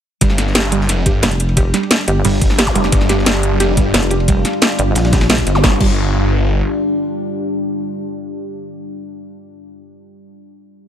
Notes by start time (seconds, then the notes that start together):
0.21 G1 G3 D4 G4, kick, closed hi-hat, ride
0.30 snare
0.38 snare, closed hi-hat, ride
0.47 snare
0.55 G4, snare, closed hi-hat, ride
0.64 ride
0.72 G3, closed hi-hat, ride
0.80 F#1, snare
0.89 snare, closed hi-hat, ride
1.06 G1 G4, kick, closed hi-hat, ride
1.23 F1 G3, snare, closed hi-hat, ride
1.31 closed hi-hat
1.40 closed hi-hat, ride
1.49 ride
1.57 G4, kick, closed hi-hat, ride
1.74 G3, snare, closed hi-hat, ride
1.83 ride
1.91 snare, closed hi-hat, ride
1.99 ride
2.08 G1 G4, closed hi-hat, ride
2.24 G1 G3, closed hi-hat, open hi-hat
2.41 kick, closed hi-hat, ride
2.50 snare
2.59 G4, snare, closed hi-hat, ride
2.67 kick, closed hi-hat, zap
2.75 F1 G3, closed hi-hat, ride
2.84 snare
2.92 G1 F4, kick, closed hi-hat, ride
3.01 snare
3.09 G4, snare, closed hi-hat, ride
3.18 snare
3.25 G3, snare, closed hi-hat, ride
3.35 ride
3.43 closed hi-hat
3.51 F#1
3.60 G4, snare, closed hi-hat, ride
3.77 G1 G3, kick, closed hi-hat, ride
3.94 F1, snare, closed hi-hat, ride
4.03 closed hi-hat
4.10 G4, closed hi-hat, ride
4.20 ride
4.28 G3, kick, closed hi-hat, ride
4.45 snare, closed hi-hat, ride
4.53 ride
4.62 G4, snare, closed hi-hat, ride
4.71 ride
4.78 G1 G3, closed hi-hat, ride
4.95 A#1, snare, closed hi-hat, ride
5.05 snare, ride
5.13 G4, kick, snare, closed hi-hat, ride
5.21 snare, ride
5.29 G3, snare, closed hi-hat, ride
5.38 kick, snare, closed hi-hat
5.47 G1, closed hi-hat, ride
5.55 snare, zap
5.64 G1 G3 D4 G4, kick, snare
5.81 G1 G3, kick, crash